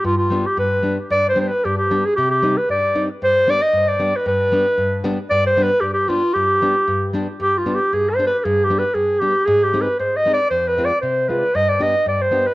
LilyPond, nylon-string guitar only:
\new Staff \with { instrumentName = "Nylon-string guitar" } { \time 2/4 \tempo 4 = 115 << { r8 <g b d'>16 r8. <g b d'>16 r16 | r8 <g b d'>16 r8. <g b d'>16 r16 | r8 <g c' ees'>16 r8. <g c' ees'>16 r16 | r8 <g b d'>16 r8. <g b d'>16 r16 |
r8 <g b d'>16 r8. <g b d'>16 r16 | r8 <g b d'>16 r8. <g b d'>16 r16 | r8 <g b d'>16 r8. <g b d'>16 r16 | r8 <g b d'>16 r8. <g b d'>16 r16 |
r8 <g b d'>16 r8. <g b d'>16 r16 | r8 <aes c' ees'>16 r8. <aes c' ees'>16 r16 | r8 <aes c' f'>16 r8. <aes c' f'>16 r16 | r8 <b d' g'>16 r8. <b d' g'>16 r16 | } \\ { g,4 g,4 | g,4 g,4 | c4 g,4 | g,4 g,4 |
g,4 g,4 | g,4 g,4 | g,4 g,4 | g,4 g,4 |
g,4 g,4 | aes,4 aes,4 | f,4 c4 | g,4 g,4 | } >> }